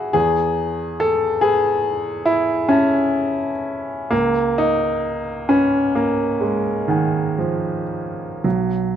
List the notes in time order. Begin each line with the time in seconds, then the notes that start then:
Already playing: E2 F#4 G#4 E5 F#5
0.13 E2 G#4
1.00 A4
1.41 G#4 B4
2.26 E4
2.69 C#4 E5 A5
4.11 C#2 A#3
4.58 D#4
5.49 C#4 B4
5.95 A#3
6.41 G#3
6.88 D#3 F#5 G#5
7.38 F3
8.44 B1 F#3